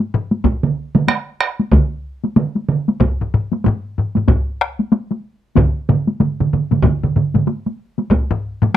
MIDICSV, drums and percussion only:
0, 0, Header, 1, 2, 480
1, 0, Start_track
1, 0, Tempo, 638298
1, 338, Time_signature, 4, 2, 24, 8
1, 6594, End_track
2, 0, Start_track
2, 0, Title_t, "Taiko and cinematic ensemble drums"
2, 0, Note_on_c, 9, 48, 60
2, 74, Note_off_c, 9, 48, 0
2, 106, Note_on_c, 9, 45, 109
2, 182, Note_off_c, 9, 45, 0
2, 235, Note_on_c, 9, 48, 63
2, 310, Note_off_c, 9, 48, 0
2, 332, Note_on_c, 9, 41, 90
2, 333, Note_on_c, 9, 48, 80
2, 407, Note_off_c, 9, 41, 0
2, 408, Note_off_c, 9, 48, 0
2, 476, Note_on_c, 9, 47, 104
2, 551, Note_off_c, 9, 47, 0
2, 713, Note_on_c, 9, 47, 117
2, 715, Note_on_c, 9, 48, 67
2, 788, Note_off_c, 9, 47, 0
2, 790, Note_off_c, 9, 48, 0
2, 810, Note_on_c, 9, 48, 83
2, 815, Note_on_c, 9, 37, 85
2, 886, Note_off_c, 9, 48, 0
2, 891, Note_off_c, 9, 37, 0
2, 1057, Note_on_c, 9, 37, 82
2, 1132, Note_off_c, 9, 37, 0
2, 1200, Note_on_c, 9, 48, 65
2, 1275, Note_off_c, 9, 48, 0
2, 1293, Note_on_c, 9, 41, 112
2, 1298, Note_on_c, 9, 48, 79
2, 1301, Note_on_c, 9, 47, 113
2, 1368, Note_off_c, 9, 41, 0
2, 1373, Note_off_c, 9, 48, 0
2, 1376, Note_off_c, 9, 47, 0
2, 1682, Note_on_c, 9, 48, 65
2, 1757, Note_off_c, 9, 48, 0
2, 1776, Note_on_c, 9, 48, 85
2, 1777, Note_on_c, 9, 47, 111
2, 1851, Note_off_c, 9, 48, 0
2, 1852, Note_off_c, 9, 47, 0
2, 1921, Note_on_c, 9, 48, 59
2, 1996, Note_off_c, 9, 48, 0
2, 2019, Note_on_c, 9, 47, 106
2, 2095, Note_off_c, 9, 47, 0
2, 2166, Note_on_c, 9, 48, 67
2, 2241, Note_off_c, 9, 48, 0
2, 2256, Note_on_c, 9, 41, 115
2, 2263, Note_on_c, 9, 48, 81
2, 2266, Note_on_c, 9, 45, 89
2, 2331, Note_off_c, 9, 41, 0
2, 2338, Note_off_c, 9, 48, 0
2, 2341, Note_off_c, 9, 45, 0
2, 2416, Note_on_c, 9, 45, 80
2, 2491, Note_off_c, 9, 45, 0
2, 2512, Note_on_c, 9, 45, 105
2, 2587, Note_off_c, 9, 45, 0
2, 2645, Note_on_c, 9, 48, 67
2, 2720, Note_off_c, 9, 48, 0
2, 2741, Note_on_c, 9, 48, 80
2, 2755, Note_on_c, 9, 45, 123
2, 2816, Note_off_c, 9, 48, 0
2, 2830, Note_off_c, 9, 45, 0
2, 2994, Note_on_c, 9, 45, 82
2, 3069, Note_off_c, 9, 45, 0
2, 3122, Note_on_c, 9, 48, 65
2, 3134, Note_on_c, 9, 45, 76
2, 3198, Note_off_c, 9, 48, 0
2, 3210, Note_off_c, 9, 45, 0
2, 3216, Note_on_c, 9, 48, 80
2, 3220, Note_on_c, 9, 41, 114
2, 3232, Note_on_c, 9, 45, 107
2, 3291, Note_off_c, 9, 48, 0
2, 3295, Note_off_c, 9, 41, 0
2, 3307, Note_off_c, 9, 45, 0
2, 3468, Note_on_c, 9, 37, 81
2, 3543, Note_off_c, 9, 37, 0
2, 3604, Note_on_c, 9, 48, 62
2, 3679, Note_off_c, 9, 48, 0
2, 3699, Note_on_c, 9, 48, 86
2, 3774, Note_off_c, 9, 48, 0
2, 3841, Note_on_c, 9, 48, 60
2, 3916, Note_off_c, 9, 48, 0
2, 4178, Note_on_c, 9, 48, 79
2, 4185, Note_on_c, 9, 41, 107
2, 4186, Note_on_c, 9, 47, 115
2, 4192, Note_on_c, 9, 45, 127
2, 4253, Note_off_c, 9, 48, 0
2, 4260, Note_off_c, 9, 41, 0
2, 4261, Note_off_c, 9, 47, 0
2, 4267, Note_off_c, 9, 45, 0
2, 4428, Note_on_c, 9, 47, 114
2, 4431, Note_on_c, 9, 45, 103
2, 4503, Note_off_c, 9, 47, 0
2, 4507, Note_off_c, 9, 45, 0
2, 4568, Note_on_c, 9, 48, 59
2, 4643, Note_off_c, 9, 48, 0
2, 4662, Note_on_c, 9, 47, 78
2, 4663, Note_on_c, 9, 48, 76
2, 4668, Note_on_c, 9, 45, 85
2, 4737, Note_off_c, 9, 47, 0
2, 4738, Note_off_c, 9, 48, 0
2, 4743, Note_off_c, 9, 45, 0
2, 4815, Note_on_c, 9, 47, 85
2, 4818, Note_on_c, 9, 45, 76
2, 4890, Note_off_c, 9, 47, 0
2, 4893, Note_off_c, 9, 45, 0
2, 4913, Note_on_c, 9, 45, 80
2, 4914, Note_on_c, 9, 47, 83
2, 4988, Note_off_c, 9, 45, 0
2, 4989, Note_off_c, 9, 47, 0
2, 5046, Note_on_c, 9, 48, 59
2, 5048, Note_on_c, 9, 45, 79
2, 5052, Note_on_c, 9, 47, 82
2, 5121, Note_off_c, 9, 48, 0
2, 5124, Note_off_c, 9, 45, 0
2, 5127, Note_off_c, 9, 47, 0
2, 5135, Note_on_c, 9, 41, 113
2, 5142, Note_on_c, 9, 48, 73
2, 5146, Note_on_c, 9, 45, 77
2, 5149, Note_on_c, 9, 47, 81
2, 5210, Note_off_c, 9, 41, 0
2, 5217, Note_off_c, 9, 48, 0
2, 5221, Note_off_c, 9, 45, 0
2, 5224, Note_off_c, 9, 47, 0
2, 5290, Note_on_c, 9, 45, 83
2, 5293, Note_on_c, 9, 47, 75
2, 5366, Note_off_c, 9, 45, 0
2, 5369, Note_off_c, 9, 47, 0
2, 5385, Note_on_c, 9, 45, 80
2, 5386, Note_on_c, 9, 47, 81
2, 5460, Note_off_c, 9, 45, 0
2, 5461, Note_off_c, 9, 47, 0
2, 5521, Note_on_c, 9, 48, 61
2, 5526, Note_on_c, 9, 45, 86
2, 5529, Note_on_c, 9, 47, 80
2, 5597, Note_off_c, 9, 48, 0
2, 5601, Note_off_c, 9, 45, 0
2, 5604, Note_off_c, 9, 47, 0
2, 5618, Note_on_c, 9, 48, 75
2, 5693, Note_off_c, 9, 48, 0
2, 5764, Note_on_c, 9, 48, 54
2, 5839, Note_off_c, 9, 48, 0
2, 6001, Note_on_c, 9, 48, 60
2, 6076, Note_off_c, 9, 48, 0
2, 6091, Note_on_c, 9, 41, 101
2, 6101, Note_on_c, 9, 48, 71
2, 6167, Note_off_c, 9, 41, 0
2, 6176, Note_off_c, 9, 48, 0
2, 6247, Note_on_c, 9, 45, 115
2, 6323, Note_off_c, 9, 45, 0
2, 6482, Note_on_c, 9, 45, 111
2, 6484, Note_on_c, 9, 48, 56
2, 6557, Note_off_c, 9, 45, 0
2, 6559, Note_off_c, 9, 48, 0
2, 6594, End_track
0, 0, End_of_file